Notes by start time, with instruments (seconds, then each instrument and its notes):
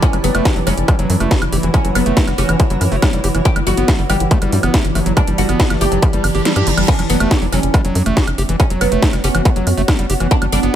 Already playing: synth drone E3 E4, ambient pad A5
0.02 oud C#4, ambient pad F#4, kick, closed hi-hat
0.13 analog synth bass F#1, acid bass F#3, closed hi-hat, high woodblock
0.21 analog synth bass F#1, acid bass F#3, oud B3, ambient pad C#5, open hi-hat
0.35 analog synth bass F#1, acid bass A3, ambient pad F#5, closed hi-hat, high woodblock
0.45 acid bass G4, kick, snare, closed hi-hat
0.56 analog synth bass F#1, acid bass F#3, open hi-hat
0.67 analog synth bass F#1, acid bass F#3, oud C#4, open hi-hat, high woodblock
0.77 analog synth bass F#1, closed hi-hat
0.88 acid bass G3, kick, closed hi-hat, high woodblock
0.99 analog synth bass F#1, acid bass F#3, closed hi-hat
1.10 analog synth bass F#2, acid bass F#3, open hi-hat
1.20 analog synth bass F#1, acid bass A3, closed hi-hat, high woodblock
1.31 acid bass G4, kick, snare, closed hi-hat
1.42 analog synth bass F#1, closed hi-hat, high woodblock
1.52 analog synth bass F#1, acid bass G4, open hi-hat
1.63 analog synth bass F#1, acid bass E3, closed hi-hat
1.74 acid bass F#3, oud C#4, kick, closed hi-hat, high woodblock
1.85 analog synth bass F#1, acid bass F#3, closed hi-hat
1.95 analog synth bass F#1, acid bass F#3, oud B3, open hi-hat, high woodblock
2.06 analog synth bass F#1, acid bass A3, closed hi-hat
2.17 kick, snare, closed hi-hat
2.27 analog synth bass F#1, acid bass G3, snare, closed hi-hat, high woodblock
2.38 analog synth bass F#1, oud C#4, acid bass G4, open hi-hat
2.49 analog synth bass F#1, acid bass E3, closed hi-hat, high woodblock
2.60 acid bass F#3, kick, closed hi-hat
2.70 analog synth bass F#1, acid bass F#3, closed hi-hat
2.81 analog synth bass F#2, open hi-hat, high woodblock
2.92 analog synth bass F#1, acid bass A3, open hi-hat
3.02 acid bass G3, kick, snare, closed hi-hat, high woodblock
3.13 analog synth bass F#1, acid bass G3, closed hi-hat
3.24 analog synth bass F#1, acid bass G4, open hi-hat
3.35 analog synth bass F#1, acid bass E3, closed hi-hat, high woodblock
3.45 oud G4, ambient pad G4, kick, closed hi-hat
3.56 analog synth bass G1, acid bass G3, closed hi-hat, high woodblock
3.62 ambient pad D5
3.67 analog synth bass G1, acid bass G3, oud F#4, open hi-hat
3.77 analog synth bass G1, acid bass B3, closed hi-hat
3.87 acid bass A3, ambient pad A5, kick, snare, closed hi-hat, high woodblock
3.99 analog synth bass G1, acid bass G3, open hi-hat
4.10 analog synth bass G1, acid bass G3, oud G4, open hi-hat, high woodblock
4.20 analog synth bass G1, closed hi-hat
4.31 acid bass A3, kick, closed hi-hat
4.42 analog synth bass G1, acid bass G3, closed hi-hat, high woodblock
4.52 analog synth bass G2, acid bass G3, open hi-hat
4.63 analog synth bass G1, acid bass B3, closed hi-hat, high woodblock
4.74 acid bass A3, kick, snare, closed hi-hat
4.85 analog synth bass G1, closed hi-hat
4.95 analog synth bass G1, acid bass A3, open hi-hat, high woodblock
5.06 analog synth bass G1, acid bass F#3, closed hi-hat
5.17 acid bass G3, oud D4, kick, closed hi-hat, high woodblock
5.27 analog synth bass G1, acid bass G3, closed hi-hat
5.38 analog synth bass G1, acid bass G3, oud F#4, open hi-hat
5.49 analog synth bass G1, acid bass B3, closed hi-hat, high woodblock
5.60 kick, snare, closed hi-hat
5.70 analog synth bass G1, acid bass A3, snare, closed hi-hat, high woodblock
5.81 analog synth bass G1, acid bass A3, oud G4, open hi-hat
5.92 analog synth bass G1, acid bass F#3, closed hi-hat
6.02 acid bass G3, kick, closed hi-hat, reverse cymbal, high woodblock
6.13 analog synth bass G1, acid bass G3, closed hi-hat
6.24 analog synth bass G1, open hi-hat, high woodblock
6.35 analog synth bass G1, acid bass G4, open hi-hat
6.45 acid bass G3, snare, closed hi-hat
6.56 analog synth bass G2, acid bass G4, closed hi-hat, high woodblock
6.67 analog synth bass G1, acid bass D4, open hi-hat
6.77 analog synth bass G1, acid bass G3, closed hi-hat, high woodblock
6.88 synth drone B3, oud C#4, ambient pad F#4, kick, closed hi-hat, crash
6.99 analog synth bass F#1, acid bass F#3, closed hi-hat, high woodblock
7.08 analog synth bass F#1, acid bass F#3, oud B3, ambient pad C#5, open hi-hat
7.20 analog synth bass F#1, acid bass A3, closed hi-hat, high woodblock
7.31 acid bass G4, kick, snare, closed hi-hat
7.42 analog synth bass F#1, acid bass F#3, open hi-hat
7.52 analog synth bass F#1, acid bass F#3, oud C#4, open hi-hat, high woodblock
7.63 analog synth bass F#1, ambient pad F#5, closed hi-hat
7.74 acid bass G3, kick, closed hi-hat, high woodblock
7.85 analog synth bass F#1, acid bass F#3, closed hi-hat
7.95 analog synth bass F#2, acid bass F#3, open hi-hat
8.06 analog synth bass F#1, acid bass A3, closed hi-hat, high woodblock
8.17 acid bass G4, kick, snare, closed hi-hat
8.28 analog synth bass F#1, closed hi-hat, high woodblock
8.38 analog synth bass F#1, acid bass G4, open hi-hat
8.49 analog synth bass F#1, acid bass E3, closed hi-hat
8.60 acid bass F#3, oud C#4, kick, closed hi-hat, high woodblock
8.70 analog synth bass F#1, acid bass F#3, closed hi-hat
8.81 analog synth bass F#1, acid bass F#3, oud B3, open hi-hat, high woodblock
8.92 analog synth bass F#1, acid bass A3, closed hi-hat
9.02 kick, snare, closed hi-hat
9.13 analog synth bass F#1, acid bass G3, snare, closed hi-hat, high woodblock
9.24 analog synth bass F#1, oud C#4, acid bass G4, open hi-hat
9.35 analog synth bass F#1, acid bass E3, closed hi-hat, high woodblock
9.45 acid bass F#3, kick, closed hi-hat
9.56 analog synth bass F#1, acid bass F#3, closed hi-hat
9.67 analog synth bass F#2, open hi-hat, high woodblock
9.77 analog synth bass F#1, acid bass A3, open hi-hat
9.88 acid bass G3, kick, snare, closed hi-hat, high woodblock
9.99 analog synth bass F#1, acid bass G3, closed hi-hat
10.10 analog synth bass F#1, acid bass G4, open hi-hat
10.20 analog synth bass F#1, acid bass E3, closed hi-hat, high woodblock
10.31 oud D4, kick, closed hi-hat
10.42 analog synth bass G1, acid bass G3, closed hi-hat, high woodblock
10.52 analog synth bass G1, acid bass G3, oud D4, open hi-hat
10.63 analog synth bass G1, acid bass B3, closed hi-hat